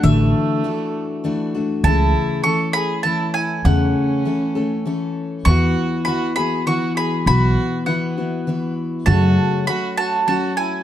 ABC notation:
X:1
M:3/4
L:1/8
Q:1/4=100
K:A
V:1 name="Mandolin"
e4- e z | a2 c' b a g | f4- f z | c'2 b b c' b |
b2 f3 z | a2 b a a g |]
V:2 name="Fiddle"
A,4- A, z | E2 A G E E | C4- C z | F2 F G F G |
F2 B,3 z | F2 F F F E |]
V:3 name="Steel-string acoustic guitar"
[D,E,A,DF]2 [E,A,DF]2 [E,A,DF] [A,DF] | [C,E,A,CA]2 [E,A,C]2 [E,A,CA]2 | [C,E,A,CA]2 [E,A,CA] [A,CA] [E,A,CA]2 | [E,B,EF]2 [E,B,EF] [B,EF] [E,B,EF]2 |
[E,B,EF]2 [E,B,EF] [B,EF] [E,B,EF]2 | [F,,C,F,A,CF]2 [F,A,CF]2 [F,A,CF]2 |]
V:4 name="Upright bass" clef=bass
A,,, z4 z | C,, z4 z | E,, z4 z | E,, z4 z |
B,,, z4 z | F,, z4 z |]